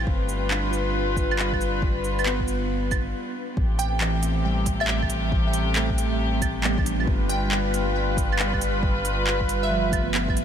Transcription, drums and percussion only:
0.07 kick loud
0.29 shaker medium
0.51 clap medium
0.73 shaker soft
1.17 kick loud
1.17 shaker medium
1.31 claves medium
1.39 clap loud
1.53 kick medium
1.53 claves soft
1.61 shaker medium
1.82 kick loud
2.04 shaker medium
2.19 claves medium
2.19 shaker soft
2.26 clap medium
2.40 kick medium
2.48 shaker medium
2.91 kick loud
2.91 claves medium
2.91 shaker medium
3.57 kick loud
3.79 open hi-hat medium
3.79 shaker medium
4.01 clap loud
4.23 open hi-hat medium
4.23 shaker medium
4.66 kick loud
4.66 open hi-hat medium
4.66 shaker medium
4.80 claves medium
4.88 clap loud
5.02 kick medium
5.02 claves soft
5.10 open hi-hat medium
5.10 shaker medium
5.32 kick loud
5.54 open hi-hat medium
5.54 shaker medium
5.76 clap loud
5.90 kick medium
5.98 open hi-hat medium
5.98 shaker medium
6.42 kick loud
6.42 open hi-hat medium
6.42 claves medium
6.42 shaker medium
6.64 clap loud
6.78 kick loud
6.78 claves soft
6.86 open hi-hat medium
6.86 shaker medium
7.00 claves soft
7.07 kick loud
7.30 open hi-hat medium
7.30 shaker medium
7.51 clap loud
7.74 open hi-hat medium
7.74 shaker medium
8.17 kick loud
8.17 open hi-hat medium
8.17 shaker medium
8.32 claves medium
8.39 clap loud
8.53 kick medium
8.53 claves soft
8.62 open hi-hat medium
8.62 shaker medium
8.83 kick loud
9.05 open hi-hat medium
9.05 shaker medium
9.27 clap loud
9.41 kick medium
9.49 open hi-hat medium
9.49 shaker medium
9.92 kick loud
9.92 open hi-hat medium
9.92 claves medium
9.92 shaker medium
10.14 clap loud
10.29 kick loud
10.29 claves soft
10.37 open hi-hat medium
10.37 shaker medium

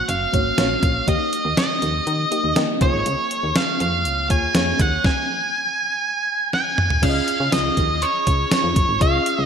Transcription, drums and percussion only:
0.09 closed hi-hat medium
0.34 kick medium
0.34 closed hi-hat medium
0.58 snare loud
0.58 closed hi-hat medium
0.83 kick loud
0.83 closed hi-hat medium
1.08 kick medium
1.08 closed hi-hat medium
1.33 closed hi-hat medium
1.57 snare loud
1.57 closed hi-hat medium
1.82 closed hi-hat medium
2.07 closed hi-hat medium
2.32 closed hi-hat medium
2.56 snare loud
2.56 closed hi-hat medium
2.81 kick loud
2.81 closed hi-hat medium
3.06 closed hi-hat medium
3.31 closed hi-hat medium
3.56 snare loud
3.56 closed hi-hat medium
3.80 closed hi-hat medium
4.05 closed hi-hat medium
4.30 kick medium
4.30 closed hi-hat medium
4.55 snare loud
4.55 closed hi-hat medium
4.79 kick loud
4.79 closed hi-hat medium
5.04 kick loud
5.04 snare medium
6.53 snare medium
6.78 mid tom medium
6.90 floor tom medium
7.03 kick medium
7.03 closed hi-hat medium
7.03 crash medium
7.28 closed hi-hat medium
7.52 snare loud
7.52 closed hi-hat medium
7.52 tambourine medium
7.77 kick medium
7.77 closed hi-hat medium
8.02 closed hi-hat medium
8.27 kick medium
8.27 closed hi-hat medium
8.51 snare loud
8.51 closed hi-hat medium
8.51 tambourine medium
8.76 kick loud
8.76 closed hi-hat medium
9.01 kick loud
9.01 closed hi-hat medium
9.26 closed hi-hat medium

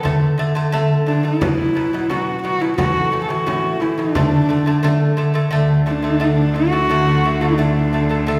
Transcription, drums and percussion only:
0.05 frame drum medium
0.40 frame drum soft
0.73 frame drum medium
1.08 frame drum soft
1.42 frame drum medium
2.10 frame drum medium
2.44 frame drum soft
2.78 frame drum medium
3.13 frame drum soft
3.47 frame drum medium
3.82 frame drum soft
4.15 frame drum medium
4.84 frame drum medium
5.18 frame drum soft

